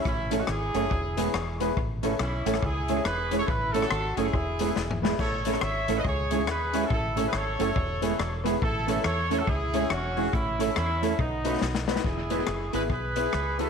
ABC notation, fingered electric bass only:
X:1
M:4/4
L:1/8
Q:"Swing" 1/4=140
K:E
V:1 name="Fingered electric bass" clef=bass
A,,,2 G,,, F,,, E,,,2 E,,,2 | A,,,2 B,,, A,,, C,,2 E,,,2 | A,,,2 G,,, F,,, E,,,2 E,,,2 | A,,,2 G,,, A,,, C,,2 D,,2 |
A,,,2 G,,, F,,, E,,,2 E,,,2 | A,,,2 E,,2 C,,2 E,,,2 | A,,,2 E,,2 B,,,2 B,,,2 | E,,,2 F,,, G,,, B,,,2 C,,2 |]